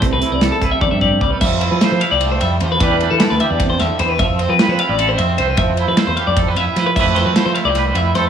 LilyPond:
<<
  \new Staff \with { instrumentName = "Clean electric guitar" } { \time 7/8 \key f \lydian \tempo 4 = 152 r16 b'8 d''8 a'16 b'16 e''16 d''16 e''16 d''8 d''16 b'16 | e''8 c''16 b'8 c''16 f''16 d''8 c''16 e''8 c''16 b'16 | d''8 b'16 a'8 b'16 e''16 d''8 c''16 e''8 c''16 b'16 | e''8 c''16 b'8 c''16 f''16 d''8 c''16 e''8 c''16 b'16 |
e''8 c''16 b'8 c''16 f''16 d''8 c''16 e''8 c''16 b'16 | e''8 c''16 b'8 c''16 f''16 d''8 c''16 e''8 c''16 b'16 | }
  \new Staff \with { instrumentName = "Clean electric guitar" } { \time 7/8 \key f \lydian << { c'8 e'8 a'8 e'16 g'8. g'4 | r8 e'8 c''8 e'16 g'4.~ g'16 | <g d' g' b'>8 d'8 d''8 g'2 | r8 c'8 b'8 e'8 a'16 c''16 c'8 c''8 |
r8 e'8 c''8 g'8 a'16 b'16 e'8 b'8 | <a e' g' b'>8 e'8 c''8 e'16 g'16 b'8 e'8 a'16 b'16 | } \\ { c2 c4 g8 | f2 a8 g8 f8 | e2 c8 d8 e8 | f2.~ f8 |
f2.~ f8 | f2.~ f8 | } >> }
  \new Staff \with { instrumentName = "Picked electric bass" } { \clef bass \time 7/8 \key f \lydian c,8 r16 c,8 r16 c,16 r16 e,16 g,8. c,16 r16 | f,8. f16 r16 f16 r16 c,8. f,8 e,8 | e,8. e16 r16 d,16 r16 e,8. e,16 r16 e,8 | f,8. f16 r16 f16 r16 a,,8. f,8 c,8 |
f,8. f16 r16 e,16 r16 f,8. f,16 r16 f8 | f,8. f16 r16 f16 r16 c,8. f,8 f,8 | }
  \new DrumStaff \with { instrumentName = "Drums" } \drummode { \time 7/8 <hh bd>8 hh8 <hh sn>8 <hh bd>8 <bd tommh>8 bd8 bd8 | <cymc bd>8 cymr8 <cymr sn>8 cymr8 cymr8 cymr8 cymr8 | <bd cymr>8 cymr8 <cymr sn>8 cymr8 <bd cymr>8 <cymr sn>8 cymr8 | <bd cymr>8 cymr8 <cymr sn>8 cymr8 cymr8 cymr8 cymr8 |
<bd cymr>8 cymr8 <cymr sn>8 cymr8 <bd cymr>8 cymr8 <cymr sn>8 | <cymc bd>8 <cymr sn>8 <cymr sn>8 cymr8 <cymr sn>8 cymr8 <cymr sn>8 | }
>>